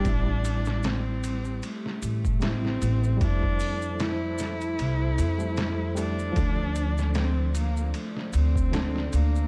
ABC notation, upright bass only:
X:1
M:4/4
L:1/8
Q:"Swing 16ths" 1/4=76
K:Am
V:1 name="Upright bass" clef=bass
A,,,4 z A,,,2 A,,, | F,,4 C,, F,,3 | D,,4 z D,,2 D,, |]